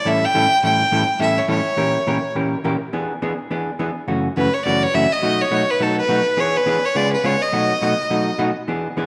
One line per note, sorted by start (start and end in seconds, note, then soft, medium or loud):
0.05 0.25 A2 medium
0.05 0.25 E3 medium
0.05 0.25 G3 medium
0.05 0.25 C#4 medium
0.05 0.25 E4 medium
0.05 0.25 A4 medium
0.05 0.26 E5 medium
0.25 0.64 G5 loud
0.34 0.45 A2 medium
0.34 0.45 E3 medium
0.34 0.45 G3 medium
0.34 0.45 C#4 medium
0.34 0.45 E4 medium
0.34 0.45 A4 medium
0.63 0.82 A2 medium
0.63 0.82 E3 medium
0.63 0.83 G3 medium
0.63 0.83 C#4 medium
0.63 0.83 E4 medium
0.63 0.83 A4 medium
0.63 1.17 G5 loud
0.92 1.02 A2 medium
0.92 1.02 E3 medium
0.92 1.03 G3 medium
0.92 1.03 C#4 medium
0.92 1.03 E4 medium
0.92 1.03 A4 medium
1.19 1.39 A2 medium
1.19 1.39 E3 medium
1.19 1.39 G3 medium
1.19 1.39 C#4 medium
1.19 1.40 E4 medium
1.19 1.40 A4 medium
1.19 1.39 E5 medium
1.38 1.49 C#5 medium
1.48 1.59 A2 medium
1.48 1.59 E3 medium
1.48 1.59 G3 medium
1.48 1.60 C#4 medium
1.48 1.60 E4 medium
1.48 1.60 A4 medium
1.48 2.32 C#5 medium
1.77 1.97 A#2 medium
1.77 1.97 E3 medium
1.77 1.97 A#3 medium
1.77 1.97 C#4 medium
1.77 1.97 G4 medium
1.77 1.97 A#4 medium
2.07 2.17 A#2 medium
2.07 2.18 E3 medium
2.07 2.18 A#3 medium
2.07 2.18 C#4 medium
2.07 2.18 G4 medium
2.07 2.18 A#4 medium
2.35 2.54 A#2 medium
2.35 2.55 E3 medium
2.35 2.55 A#3 medium
2.35 2.55 C#4 medium
2.35 2.55 G4 medium
2.35 2.55 A#4 medium
2.64 2.75 A#2 medium
2.64 2.75 E3 medium
2.64 2.75 A#3 medium
2.64 2.75 C#4 medium
2.64 2.75 G4 medium
2.64 2.75 A#4 medium
2.93 3.12 E3 soft
2.93 3.12 B3 medium
2.93 3.12 D4 medium
2.93 3.12 G#4 medium
3.22 3.33 E3 medium
3.22 3.33 B3 medium
3.22 3.33 D4 medium
3.22 3.33 G#4 medium
3.51 3.70 E3 medium
3.51 3.70 B3 medium
3.51 3.70 D4 medium
3.51 3.70 G#4 medium
3.79 3.90 E3 medium
3.79 3.90 B3 medium
3.79 3.90 D4 medium
3.79 3.90 G#4 medium
4.08 4.27 F#2 medium
4.08 4.27 C#3 medium
4.08 4.27 E3 medium
4.08 4.27 A3 medium
4.08 4.27 C#4 medium
4.08 4.27 F#4 medium
4.36 4.47 F#2 medium
4.36 4.47 C#3 medium
4.36 4.47 E3 medium
4.36 4.48 A3 medium
4.36 4.47 C#4 medium
4.36 4.48 F#4 medium
4.36 4.55 B4 medium
4.53 4.64 C#5 medium
4.65 4.85 F#2 medium
4.65 4.85 C#3 medium
4.65 4.85 E3 medium
4.65 4.85 A3 medium
4.65 4.85 C#4 medium
4.65 4.85 F#4 medium
4.65 4.84 D5 medium
4.83 4.96 C#5 loud
4.94 5.05 F#2 medium
4.94 5.05 C#3 medium
4.94 5.05 E3 medium
4.94 5.05 A3 medium
4.94 5.05 C#4 medium
4.94 5.05 F#4 medium
4.94 5.13 E5 loud
5.12 5.43 D#5 medium
5.22 5.42 B2 medium
5.22 5.42 F#3 medium
5.22 5.42 A3 medium
5.22 5.42 D#4 medium
5.22 5.42 F#4 medium
5.41 5.72 C#5 loud
5.51 5.62 B2 medium
5.51 5.62 F#3 medium
5.51 5.62 A3 medium
5.51 5.62 D#4 medium
5.51 5.63 F#4 medium
5.70 5.83 B4 loud
5.80 5.99 B2 medium
5.80 5.99 F#3 medium
5.80 6.00 A3 medium
5.80 6.00 D#4 medium
5.80 6.00 F#4 medium
5.80 5.98 A4 medium
5.99 6.41 B4 medium
6.08 6.19 B2 medium
6.08 6.20 F#3 medium
6.08 6.20 A3 medium
6.08 6.20 D#4 medium
6.08 6.20 F#4 medium
6.37 6.56 E3 medium
6.37 6.57 B3 medium
6.37 6.57 D4 medium
6.37 6.57 G#4 medium
6.37 6.58 C#5 medium
6.56 6.86 B4 medium
6.66 6.77 E3 medium
6.66 6.77 B3 medium
6.66 6.77 D4 medium
6.66 6.77 G#4 medium
6.85 6.98 C#5 medium
6.95 7.14 C#3 medium
6.95 7.15 G#3 medium
6.95 7.15 B3 medium
6.95 7.15 F4 medium
6.95 7.15 G#4 medium
6.95 7.12 D5 medium
7.13 7.27 B4 medium
7.24 7.35 C#3 medium
7.24 7.35 G#3 medium
7.24 7.35 B3 medium
7.24 7.35 F4 medium
7.24 7.35 G#4 medium
7.24 7.43 C#5 medium
7.42 8.40 D#5 medium
7.52 7.72 B2 medium
7.52 7.72 F#3 medium
7.52 7.72 A3 medium
7.52 7.72 D#4 medium
7.52 7.72 F#4 medium
7.82 7.92 B2 medium
7.82 7.93 F#3 medium
7.82 7.93 A3 medium
7.82 7.93 D#4 medium
7.82 7.93 F#4 medium
8.10 8.29 B2 medium
8.10 8.30 F#3 medium
8.10 8.30 A3 medium
8.10 8.30 D#4 medium
8.10 8.30 F#4 medium
8.38 8.49 B2 medium
8.38 8.50 F#3 medium
8.38 8.50 A3 medium
8.38 8.50 D#4 medium
8.38 8.50 F#4 medium
8.68 8.87 E3 medium
8.68 8.87 B3 medium
8.68 8.87 D4 medium
8.68 8.87 G#4 medium
8.97 9.06 E3 medium
8.97 9.06 B3 medium
8.97 9.06 D4 medium
8.97 9.06 G#4 medium